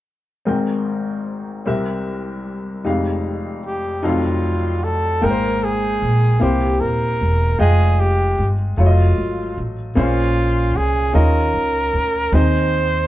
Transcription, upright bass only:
5.23 G#1
6.02 A#1
6.41 C2
6.81 D#1
7.21 E1
7.60 F1
8.39 G1
8.78 F1
9.17 G#1
9.58 A1
9.97 A#1
10.75 C2
11.14 D#2
11.54 C#2
11.93 D2
12.32 D#2

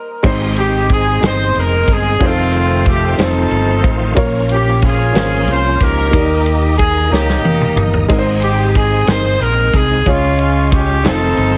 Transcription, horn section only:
0.58 G4
0.92 G#4
1.26 C5
1.60 A#4
1.93 G#4
2.23 A3 C4 F4
2.57 F4
2.89 G4
3.20 C4 D#4 A4
4.52 G4
4.84 C#4 F4 G#4
5.51 C5
5.81 D#4 G4 A#4
6.78 G#4
7.12 A#3 D#4 G4
8.43 G4
8.77 G#4
9.09 C5
9.41 A#4
9.75 G#4
10.08 G#3 C#4 F4
10.40 F4
10.74 G4
11.05 C4 D#4 A4

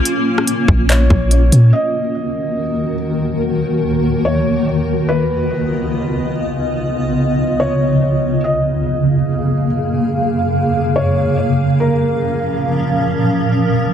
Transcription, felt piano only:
0.90 C#5
1.73 D#5
4.25 C#5
5.09 B4
7.60 C#5
8.44 D#5
10.96 C#5
11.80 A#4

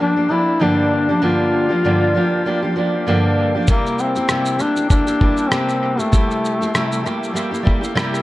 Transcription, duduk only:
0.01 D4
0.32 E4
0.63 D4
1.24 F4
3.69 A#3
4.00 C4
4.61 D4
4.90 D4
5.49 C4
5.99 A3

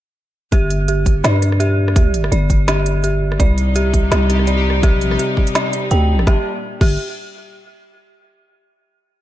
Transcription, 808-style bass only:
0.52 G1
1.24 G2
2.32 G1
3.40 C2
4.12 C2
4.87 B1
5.08 A#1
5.91 D2
6.27 G1
6.81 G1

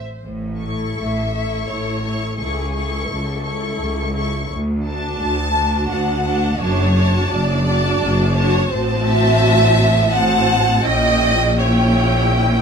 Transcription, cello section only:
0.23 A2
0.99 A2
1.71 A2
2.39 C#2
3.09 C#2
3.81 C#2
4.50 D2
5.20 D2
5.89 D2
6.58 F#2
7.30 F#2
8.01 F#2
8.70 A2
10.84 A#2

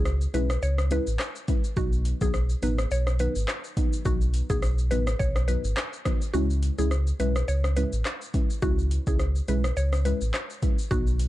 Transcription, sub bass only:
Already playing: C#2
0.34 B1
0.62 C#2
1.07 A1
1.77 B1
2.21 B1
2.62 A1
2.91 B1
3.36 G#1
4.05 B1
4.50 B1
4.91 A1
5.20 B1
5.64 G#1
6.34 C#2
6.78 C#2
7.20 B1
7.48 C#2
7.93 A1
8.63 C#2
9.07 C#2
9.48 B1
9.77 C#2
10.21 A1
10.91 B1

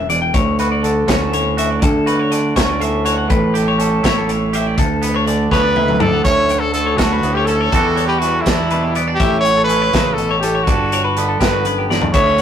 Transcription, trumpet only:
5.52 B4
6.00 A4
6.24 C#5
6.59 A4
6.73 A4
6.97 F#4
7.34 G4
7.46 A4
8.07 G4
8.19 F#4
8.41 E4
9.15 G4
9.40 C#5
9.64 B4
10.13 A4
10.40 G4
10.64 F#4
11.40 B4
12.13 C#5

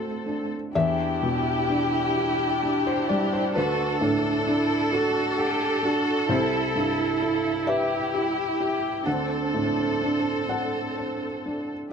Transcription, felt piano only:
Already playing: D2 A2 D4 F#4 A4 F#5
0.26 D4
0.75 E2 E5
1.23 B2
1.70 D4
2.17 G4
2.63 D4
2.87 C5
3.09 G3 D5
3.33 C5
3.55 D2 B4
4.01 A2
4.47 D4
4.92 A4
5.38 F#5
5.83 D4
6.29 C2 C5
6.76 G2
7.22 E4
7.67 B4 E5
8.14 G4
8.60 E4
9.06 D2 F#5
9.54 A2
10.02 D4
10.49 A4 F#5
10.98 C5
11.46 D4

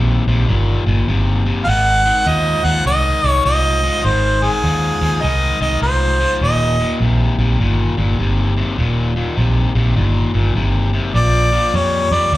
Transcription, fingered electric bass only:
Already playing: A#1
0.27 A#1
0.49 G1
0.87 G1
1.08 G1
1.67 G#1
2.26 D#2
2.64 D#2
2.86 C2
3.24 C2
3.45 C2
4.05 G#1
4.64 D#2
5.01 D#2
5.23 C2
5.60 C2
5.82 C2
6.41 D#1
7.00 A#1
7.38 A#1
7.59 G1
7.98 G1
8.19 G1
8.78 D#1
9.37 A#1
9.75 A#1
9.97 G1
10.35 G1
10.56 G1
11.14 A#1
11.74 F2
12.11 F2
12.32 D2

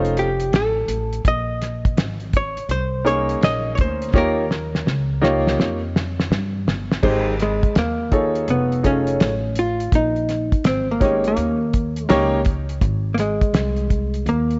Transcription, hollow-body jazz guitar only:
0.19 G4
0.55 A4
1.28 D#5
2.37 C#5
2.71 C5
3.07 C#5
3.44 D#5
3.75 C#5
3.81 C5
4.18 A#4
7.42 G#3
7.79 A#3
8.51 B3
8.86 C#4
9.59 F4
9.95 D#4
10.67 C4
10.91 A#3
11.04 G#3
11.28 A#3
12.07 G#3
13.14 A#3
13.20 G#3
14.29 A#3

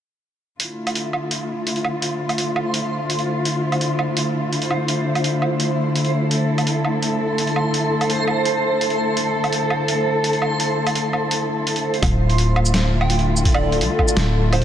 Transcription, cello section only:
0.60 D3 A3 E4 F4
6.31 A4
12.02 D3 A3 E4 F4

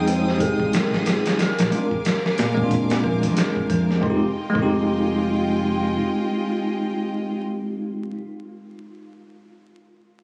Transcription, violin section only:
Already playing: G#3 F5 G5 D#6
1.39 A#4 F5 G#5 D6
4.03 G#3 F4 D#5 G5

